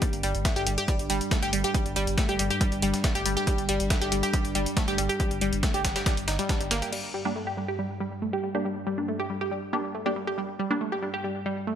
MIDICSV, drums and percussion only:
0, 0, Header, 1, 2, 480
1, 0, Start_track
1, 0, Key_signature, -2, "minor"
1, 0, Tempo, 431655
1, 21, Time_signature, 4, 2, 24, 8
1, 13069, End_track
2, 0, Start_track
2, 0, Title_t, "Drums"
2, 20, Note_on_c, 9, 36, 120
2, 20, Note_on_c, 9, 42, 88
2, 131, Note_off_c, 9, 36, 0
2, 131, Note_off_c, 9, 42, 0
2, 145, Note_on_c, 9, 42, 48
2, 256, Note_off_c, 9, 42, 0
2, 260, Note_on_c, 9, 42, 68
2, 260, Note_on_c, 9, 46, 105
2, 371, Note_off_c, 9, 46, 0
2, 372, Note_off_c, 9, 42, 0
2, 385, Note_on_c, 9, 42, 48
2, 497, Note_off_c, 9, 42, 0
2, 500, Note_on_c, 9, 36, 119
2, 501, Note_on_c, 9, 38, 117
2, 501, Note_on_c, 9, 42, 75
2, 611, Note_off_c, 9, 36, 0
2, 612, Note_off_c, 9, 38, 0
2, 612, Note_off_c, 9, 42, 0
2, 625, Note_on_c, 9, 42, 50
2, 736, Note_off_c, 9, 42, 0
2, 740, Note_on_c, 9, 46, 103
2, 741, Note_on_c, 9, 42, 71
2, 851, Note_off_c, 9, 46, 0
2, 852, Note_off_c, 9, 42, 0
2, 865, Note_on_c, 9, 42, 50
2, 976, Note_off_c, 9, 42, 0
2, 980, Note_on_c, 9, 36, 122
2, 980, Note_on_c, 9, 42, 74
2, 981, Note_off_c, 9, 42, 0
2, 981, Note_on_c, 9, 42, 93
2, 1091, Note_off_c, 9, 36, 0
2, 1092, Note_off_c, 9, 42, 0
2, 1105, Note_on_c, 9, 42, 51
2, 1216, Note_off_c, 9, 42, 0
2, 1220, Note_on_c, 9, 42, 68
2, 1220, Note_on_c, 9, 46, 111
2, 1332, Note_off_c, 9, 42, 0
2, 1332, Note_off_c, 9, 46, 0
2, 1345, Note_on_c, 9, 42, 48
2, 1456, Note_off_c, 9, 42, 0
2, 1460, Note_on_c, 9, 36, 114
2, 1460, Note_on_c, 9, 38, 121
2, 1460, Note_on_c, 9, 42, 90
2, 1461, Note_off_c, 9, 42, 0
2, 1461, Note_on_c, 9, 42, 77
2, 1571, Note_off_c, 9, 36, 0
2, 1571, Note_off_c, 9, 38, 0
2, 1572, Note_off_c, 9, 42, 0
2, 1585, Note_on_c, 9, 38, 38
2, 1585, Note_on_c, 9, 42, 52
2, 1696, Note_off_c, 9, 38, 0
2, 1697, Note_off_c, 9, 42, 0
2, 1700, Note_on_c, 9, 42, 67
2, 1700, Note_on_c, 9, 46, 107
2, 1811, Note_off_c, 9, 42, 0
2, 1812, Note_off_c, 9, 46, 0
2, 1825, Note_on_c, 9, 42, 49
2, 1936, Note_off_c, 9, 42, 0
2, 1940, Note_on_c, 9, 36, 113
2, 1940, Note_on_c, 9, 42, 89
2, 1941, Note_off_c, 9, 42, 0
2, 1941, Note_on_c, 9, 42, 71
2, 2051, Note_off_c, 9, 36, 0
2, 2052, Note_off_c, 9, 42, 0
2, 2066, Note_on_c, 9, 42, 50
2, 2177, Note_off_c, 9, 42, 0
2, 2180, Note_on_c, 9, 42, 67
2, 2181, Note_on_c, 9, 46, 101
2, 2291, Note_off_c, 9, 42, 0
2, 2292, Note_off_c, 9, 46, 0
2, 2305, Note_on_c, 9, 42, 48
2, 2417, Note_off_c, 9, 42, 0
2, 2420, Note_on_c, 9, 36, 109
2, 2420, Note_on_c, 9, 38, 115
2, 2420, Note_on_c, 9, 42, 89
2, 2421, Note_off_c, 9, 42, 0
2, 2421, Note_on_c, 9, 42, 75
2, 2531, Note_off_c, 9, 36, 0
2, 2531, Note_off_c, 9, 38, 0
2, 2532, Note_off_c, 9, 42, 0
2, 2545, Note_on_c, 9, 42, 51
2, 2656, Note_off_c, 9, 42, 0
2, 2660, Note_on_c, 9, 42, 68
2, 2661, Note_on_c, 9, 46, 104
2, 2771, Note_off_c, 9, 42, 0
2, 2772, Note_off_c, 9, 46, 0
2, 2785, Note_on_c, 9, 42, 49
2, 2897, Note_off_c, 9, 42, 0
2, 2900, Note_on_c, 9, 36, 117
2, 2901, Note_on_c, 9, 42, 89
2, 3011, Note_off_c, 9, 36, 0
2, 3012, Note_off_c, 9, 42, 0
2, 3025, Note_on_c, 9, 42, 49
2, 3136, Note_off_c, 9, 42, 0
2, 3140, Note_on_c, 9, 42, 72
2, 3141, Note_on_c, 9, 46, 105
2, 3251, Note_off_c, 9, 42, 0
2, 3252, Note_off_c, 9, 46, 0
2, 3265, Note_on_c, 9, 38, 54
2, 3265, Note_on_c, 9, 42, 49
2, 3376, Note_off_c, 9, 38, 0
2, 3376, Note_off_c, 9, 42, 0
2, 3380, Note_on_c, 9, 36, 114
2, 3380, Note_on_c, 9, 38, 120
2, 3380, Note_on_c, 9, 42, 75
2, 3491, Note_off_c, 9, 36, 0
2, 3491, Note_off_c, 9, 38, 0
2, 3492, Note_off_c, 9, 42, 0
2, 3505, Note_on_c, 9, 42, 51
2, 3616, Note_off_c, 9, 42, 0
2, 3620, Note_on_c, 9, 46, 102
2, 3621, Note_on_c, 9, 42, 67
2, 3732, Note_off_c, 9, 42, 0
2, 3732, Note_off_c, 9, 46, 0
2, 3745, Note_on_c, 9, 42, 49
2, 3856, Note_off_c, 9, 42, 0
2, 3860, Note_on_c, 9, 36, 115
2, 3860, Note_on_c, 9, 42, 89
2, 3971, Note_off_c, 9, 36, 0
2, 3972, Note_off_c, 9, 42, 0
2, 3985, Note_on_c, 9, 42, 53
2, 4096, Note_off_c, 9, 42, 0
2, 4100, Note_on_c, 9, 42, 68
2, 4100, Note_on_c, 9, 46, 105
2, 4211, Note_off_c, 9, 46, 0
2, 4212, Note_off_c, 9, 42, 0
2, 4225, Note_on_c, 9, 42, 51
2, 4336, Note_off_c, 9, 42, 0
2, 4340, Note_on_c, 9, 36, 111
2, 4340, Note_on_c, 9, 42, 77
2, 4341, Note_off_c, 9, 42, 0
2, 4341, Note_on_c, 9, 38, 121
2, 4341, Note_on_c, 9, 42, 89
2, 4452, Note_off_c, 9, 36, 0
2, 4452, Note_off_c, 9, 38, 0
2, 4452, Note_off_c, 9, 42, 0
2, 4466, Note_on_c, 9, 42, 51
2, 4577, Note_off_c, 9, 42, 0
2, 4580, Note_on_c, 9, 42, 67
2, 4581, Note_on_c, 9, 46, 102
2, 4692, Note_off_c, 9, 42, 0
2, 4692, Note_off_c, 9, 46, 0
2, 4705, Note_on_c, 9, 42, 52
2, 4816, Note_off_c, 9, 42, 0
2, 4821, Note_on_c, 9, 36, 118
2, 4821, Note_on_c, 9, 42, 91
2, 4932, Note_off_c, 9, 36, 0
2, 4932, Note_off_c, 9, 42, 0
2, 4945, Note_on_c, 9, 42, 51
2, 5057, Note_off_c, 9, 42, 0
2, 5061, Note_on_c, 9, 42, 69
2, 5061, Note_on_c, 9, 46, 104
2, 5172, Note_off_c, 9, 42, 0
2, 5172, Note_off_c, 9, 46, 0
2, 5186, Note_on_c, 9, 42, 52
2, 5297, Note_off_c, 9, 42, 0
2, 5300, Note_on_c, 9, 36, 113
2, 5300, Note_on_c, 9, 42, 76
2, 5301, Note_off_c, 9, 42, 0
2, 5301, Note_on_c, 9, 38, 116
2, 5301, Note_on_c, 9, 42, 89
2, 5412, Note_off_c, 9, 36, 0
2, 5412, Note_off_c, 9, 38, 0
2, 5412, Note_off_c, 9, 42, 0
2, 5425, Note_on_c, 9, 38, 37
2, 5425, Note_on_c, 9, 42, 53
2, 5536, Note_off_c, 9, 42, 0
2, 5537, Note_off_c, 9, 38, 0
2, 5541, Note_on_c, 9, 42, 68
2, 5541, Note_on_c, 9, 46, 104
2, 5652, Note_off_c, 9, 42, 0
2, 5652, Note_off_c, 9, 46, 0
2, 5665, Note_on_c, 9, 42, 51
2, 5777, Note_off_c, 9, 42, 0
2, 5780, Note_on_c, 9, 42, 75
2, 5781, Note_off_c, 9, 42, 0
2, 5781, Note_on_c, 9, 36, 118
2, 5781, Note_on_c, 9, 42, 90
2, 5892, Note_off_c, 9, 36, 0
2, 5892, Note_off_c, 9, 42, 0
2, 5905, Note_on_c, 9, 42, 51
2, 6016, Note_off_c, 9, 42, 0
2, 6020, Note_on_c, 9, 42, 69
2, 6020, Note_on_c, 9, 46, 107
2, 6132, Note_off_c, 9, 42, 0
2, 6132, Note_off_c, 9, 46, 0
2, 6145, Note_on_c, 9, 42, 52
2, 6256, Note_off_c, 9, 42, 0
2, 6260, Note_on_c, 9, 36, 114
2, 6260, Note_on_c, 9, 38, 117
2, 6260, Note_on_c, 9, 42, 82
2, 6372, Note_off_c, 9, 36, 0
2, 6372, Note_off_c, 9, 38, 0
2, 6372, Note_off_c, 9, 42, 0
2, 6385, Note_on_c, 9, 42, 54
2, 6497, Note_off_c, 9, 42, 0
2, 6500, Note_on_c, 9, 36, 59
2, 6500, Note_on_c, 9, 46, 105
2, 6501, Note_on_c, 9, 38, 105
2, 6501, Note_on_c, 9, 42, 78
2, 6612, Note_off_c, 9, 36, 0
2, 6612, Note_off_c, 9, 38, 0
2, 6612, Note_off_c, 9, 42, 0
2, 6612, Note_off_c, 9, 46, 0
2, 6625, Note_on_c, 9, 38, 108
2, 6625, Note_on_c, 9, 42, 81
2, 6736, Note_off_c, 9, 38, 0
2, 6736, Note_off_c, 9, 42, 0
2, 6740, Note_on_c, 9, 36, 119
2, 6740, Note_on_c, 9, 38, 109
2, 6740, Note_on_c, 9, 42, 83
2, 6741, Note_off_c, 9, 42, 0
2, 6741, Note_on_c, 9, 42, 80
2, 6852, Note_off_c, 9, 36, 0
2, 6852, Note_off_c, 9, 38, 0
2, 6852, Note_off_c, 9, 42, 0
2, 6865, Note_on_c, 9, 42, 43
2, 6865, Note_on_c, 9, 46, 59
2, 6977, Note_off_c, 9, 42, 0
2, 6977, Note_off_c, 9, 46, 0
2, 6980, Note_on_c, 9, 46, 103
2, 6981, Note_on_c, 9, 38, 106
2, 6981, Note_on_c, 9, 42, 79
2, 7092, Note_off_c, 9, 38, 0
2, 7092, Note_off_c, 9, 42, 0
2, 7092, Note_off_c, 9, 46, 0
2, 7106, Note_on_c, 9, 38, 54
2, 7106, Note_on_c, 9, 42, 52
2, 7217, Note_off_c, 9, 38, 0
2, 7217, Note_off_c, 9, 42, 0
2, 7220, Note_on_c, 9, 36, 114
2, 7221, Note_on_c, 9, 38, 115
2, 7221, Note_on_c, 9, 42, 91
2, 7332, Note_off_c, 9, 36, 0
2, 7332, Note_off_c, 9, 38, 0
2, 7332, Note_off_c, 9, 42, 0
2, 7346, Note_on_c, 9, 42, 54
2, 7457, Note_off_c, 9, 42, 0
2, 7461, Note_on_c, 9, 38, 102
2, 7461, Note_on_c, 9, 42, 78
2, 7461, Note_on_c, 9, 46, 105
2, 7572, Note_off_c, 9, 38, 0
2, 7572, Note_off_c, 9, 42, 0
2, 7572, Note_off_c, 9, 46, 0
2, 7585, Note_on_c, 9, 38, 35
2, 7585, Note_on_c, 9, 42, 52
2, 7696, Note_off_c, 9, 38, 0
2, 7697, Note_off_c, 9, 42, 0
2, 7701, Note_on_c, 9, 49, 79
2, 7812, Note_off_c, 9, 49, 0
2, 13069, End_track
0, 0, End_of_file